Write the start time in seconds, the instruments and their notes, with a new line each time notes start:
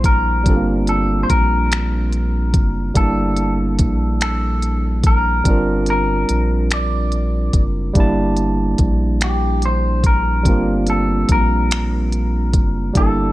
Already playing: analog synth bass A#1, tine electric piano G3 A#3 D4 E4 A5
0.04 clean electric guitar A#4, kick, closed hi-hat
0.43 analog synth bass G1, tine electric piano G3 C4 D4, kick, closed hi-hat
0.48 tine electric piano F4 A4
0.56 tine electric piano A#3
0.87 clean electric guitar A4, closed hi-hat
1.23 clean electric guitar C5
1.30 analog synth bass A#1, clean electric guitar A#4, kick, closed hi-hat
1.72 finger snap, closed hi-hat
2.13 closed hi-hat
2.54 analog synth bass F#1, kick, closed hi-hat
2.94 analog synth bass G1, tine electric piano G3 A#3 D4, clean electric guitar A4, kick, closed hi-hat
2.99 tine electric piano E4 A5
3.37 closed hi-hat
3.79 analog synth bass A#1, kick, closed hi-hat
4.21 clean electric guitar A4, finger snap, closed hi-hat
4.62 closed hi-hat
5.04 clean electric guitar A#4, kick, closed hi-hat
5.43 analog synth bass G1, tine electric piano G3 C4 D4, kick, closed hi-hat
5.49 tine electric piano F4 A#4
5.86 clean electric guitar A#4, closed hi-hat
6.29 analog synth bass A#1, closed hi-hat
6.71 clean electric guitar D5, finger snap, closed hi-hat
7.12 closed hi-hat
7.53 analog synth bass F#1, kick, closed hi-hat
7.93 analog synth bass G1, tine electric piano G3 A#3 D4, kick, closed hi-hat
7.99 tine electric piano E4 A5
8.37 closed hi-hat
8.78 analog synth bass A#1, kick, closed hi-hat
9.21 clean electric guitar G4, finger snap, closed hi-hat
9.62 clean electric guitar C5, closed hi-hat
10.04 clean electric guitar A#4, kick, closed hi-hat
10.43 analog synth bass G1, tine electric piano G3 C4 D4, kick, closed hi-hat
10.48 tine electric piano A#3 F4
10.87 clean electric guitar A4, closed hi-hat
11.29 analog synth bass A#1, clean electric guitar A#4, kick, closed hi-hat
11.71 finger snap, closed hi-hat
12.12 closed hi-hat
12.53 analog synth bass F#1, kick, closed hi-hat
12.93 analog synth bass G1, tine electric piano G3 A#3 D4, kick, closed hi-hat
12.97 tine electric piano E4 A4, clean electric guitar A4